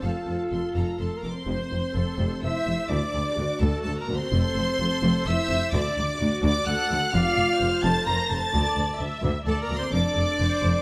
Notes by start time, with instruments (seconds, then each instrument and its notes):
Already playing: violin section A5
0.02 double bass section F1, cello section F2, french horn section F4, violin section A4 F5, viola section A4, trumpet F5
0.27 double bass section F1, cello section F2, violin section A4 C5
0.49 double bass section F1, cello section F2, violin section A4 C6
0.73 double bass section F1, cello section F2, violin section A4 F5 A#5
0.99 double bass section F1, cello section F2, french horn section A3, flute A4, trumpet A4, violin section A4 C5 A5 C6
1.16 french horn section A#3, trumpet A#4, flute A#4, violin section A#4 A#5
1.23 double bass section F1, cello section F2, violin section A4 D6
1.30 french horn section C4, violin section C5 C6, trumpet C5, flute C5
1.47 double bass section F1, cello section F2, viola section C5
1.72 double bass section F1, cello section F2
1.95 double bass section F1, cello section F2, viola section A4
2.19 double bass section F1, cello section F2
2.42 double bass section F1, cello section F2, french horn section E4, viola section C5, violin section E5 E6, flute E5, trumpet E5
2.66 double bass section F1, cello section F2
2.88 cello section D2, double bass section D2, french horn section D4, viola section D5, flute D5, trumpet D5, violin section D5 D6
3.14 double bass section D2, cello section D2
3.37 cello section D2, double bass section D2, viola section F#4
3.60 double bass section D2, cello section D2, french horn section A3, violin section A4 A5, trumpet A4, flute A4
3.83 double bass section D2, cello section D2, violin section A4 A5, trumpet A4, flute A4
3.88 french horn section A3
3.99 violin section A#4 A#5, trumpet A#4, flute A#4
4.04 french horn section A#3
4.08 double bass section D2, cello section D2
4.14 violin section C5 C6, flute C5, trumpet C5
4.19 french horn section C4
4.32 double bass section F1, cello section F2, viola section A4
4.56 double bass section F1, cello section F2
4.79 double bass section F1, cello section F2, viola section A4
5.03 double bass section F1, cello section F2
5.26 double bass section F1, cello section F2, french horn section E4, viola section C5, violin section E5 E6, flute E5, trumpet E5
5.50 double bass section F1, cello section F2
5.73 double bass section D2, cello section D2, french horn section D4, viola section D5, flute D5, trumpet D5, violin section D5 D6
5.97 double bass section D2, cello section D2
6.19 double bass section D2, cello section D2, viola section F#4
6.42 double bass section D2, cello section D2, french horn section D4, violin section D5 D6, trumpet D5, flute D5
6.64 double bass section D2, cello section D2, viola section A4, violin section F#5 F#6, trumpet F#5
6.68 french horn section F#4, flute F#5
6.91 cello section D2, double bass section D2
7.12 double bass section F1, cello section F2, french horn section F4, viola section D5, violin section F5 F6, trumpet F5, flute F5
7.36 double bass section F1, cello section F2
7.60 double bass section F1, cello section F2, viola section C5
7.82 double bass section F1, cello section F2, french horn section A4, violin section A5 A6, flute A5, trumpet A5
8.06 double bass section F1, cello section F2, french horn section A#4, violin section A#5 A#6, flute A#5, trumpet A#5
8.29 double bass section F1, cello section F2, french horn section A4, violin section A5 A6, trumpet A5, flute A5
8.53 double bass section D2, cello section D2, viola section D5
8.76 double bass section D2, cello section D2
8.99 double bass section D2, cello section D2, viola section E5
9.22 double bass section D2, cello section D2
9.45 double bass section D2, cello section D2, french horn section A3, trumpet A4, flute A4, violin section A4 A5, viola section D5
9.61 french horn section A#3, violin section A#4 A#5, trumpet A#4, flute A#4
9.69 double bass section D2, cello section D2
9.76 french horn section C4, violin section C5 C6, trumpet C5, flute C5
9.92 double bass section F1, cello section F2, french horn section D4, viola section A4, violin section D5 D6, flute D5, trumpet D5
10.16 double bass section F1, cello section F2
10.39 double bass section F1, cello section F2, viola section C5
10.63 double bass section F1, cello section F2